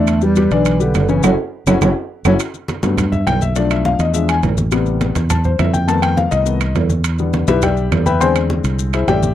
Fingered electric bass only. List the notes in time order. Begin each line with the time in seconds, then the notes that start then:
Already playing: E2
0.51 B1
0.95 F#1
1.24 F#1
1.67 F#1
1.81 F#1
2.25 F#1
2.83 G2
3.27 B1
3.99 E2
4.43 A1
5.16 E2
5.59 F2
6.32 C2
6.75 E2
7.48 B1
7.91 E2
8.64 C2
9.07 A1